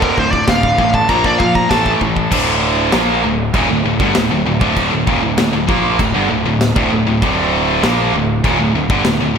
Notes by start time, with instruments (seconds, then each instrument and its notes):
Already playing: picked electric bass D1, distorted electric guitar D2 A2 D3
0.02 lead electric guitar A#4, kick
0.17 picked electric bass D1, distorted electric guitar D2 A2 D3, lead electric guitar C5, kick
0.31 lead electric guitar D5, kick
0.47 picked electric bass D1, distorted electric guitar D2 A2 D3, lead electric guitar F5, kick, snare, china
0.63 kick
0.78 picked electric bass A1, distorted electric guitar D2 A2 D3, kick
0.94 lead electric guitar A5, kick
1.09 picked electric bass A#1, distorted electric guitar A#2 F3 A#3, lead electric guitar A#5, kick, china
1.24 lead electric guitar D5, kick
1.38 distorted electric guitar A#2 F3 A#3, picked electric bass A#2, lead electric guitar F5, kick
1.55 lead electric guitar A#5, kick
1.70 picked electric bass A1, distorted electric guitar A2 E3 A3, lead electric guitar A5, kick, snare, china
1.86 kick
2.01 picked electric bass A1, distorted electric guitar A2 E3 A3, kick
2.16 kick
2.31 picked electric bass D1, distorted electric guitar D2 A2 D3, kick, crash, china
2.92 picked electric bass A#1, distorted electric guitar A#2 F3 A#3, snare, china
3.24 picked electric bass D1, distorted electric guitar D2 A2
3.54 picked electric bass D#1, distorted electric guitar D#2 A#2, kick, china
3.70 picked electric bass D1, distorted electric guitar D2 A2
3.85 picked electric bass D1, distorted electric guitar D2 A2
4.00 picked electric bass G1, distorted electric guitar G2 D3, kick
4.15 picked electric bass D1, distorted electric guitar D2 A2, snare, china
4.31 picked electric bass D1, distorted electric guitar D2 A2
4.47 picked electric bass D1, distorted electric guitar D2 A2
4.61 picked electric bass D1, distorted electric guitar D2 A2 D3, kick
4.76 kick, china
4.91 picked electric bass D1, distorted electric guitar D2 A2
5.07 picked electric bass D#1, distorted electric guitar D#2 A#2, kick
5.23 picked electric bass D1, distorted electric guitar D2 A2
5.38 picked electric bass D1, distorted electric guitar D2 A2, snare, china
5.53 picked electric bass D1, distorted electric guitar D2 A2
5.68 picked electric bass A#1, distorted electric guitar A#2 F3 A#3, kick
5.99 picked electric bass D1, distorted electric guitar D2 A2, kick, china
6.15 picked electric bass G1, distorted electric guitar G2 D3
6.31 picked electric bass D1, distorted electric guitar D2 A2
6.46 picked electric bass D1, distorted electric guitar D2 A2
6.61 snare, china
6.76 picked electric bass D1, distorted electric guitar D2 A2, kick
6.92 picked electric bass D1, distorted electric guitar D2 A2
7.07 picked electric bass D1, distorted electric guitar D2 A2
7.22 picked electric bass D1, distorted electric guitar D2 A2 D3, kick, china
7.83 picked electric bass A#1, distorted electric guitar A#2 F3 A#3, snare, china
8.14 picked electric bass D1, distorted electric guitar D2 A2
8.44 picked electric bass D#1, distorted electric guitar D#2 A#2, kick, china
8.59 picked electric bass D1, distorted electric guitar D2 A2
8.74 picked electric bass D1, distorted electric guitar D2 A2
8.90 picked electric bass G1, distorted electric guitar G2 D3, kick
9.05 picked electric bass D1, distorted electric guitar D2 A2, snare, china
9.20 picked electric bass D1, distorted electric guitar D2 A2
9.35 picked electric bass D1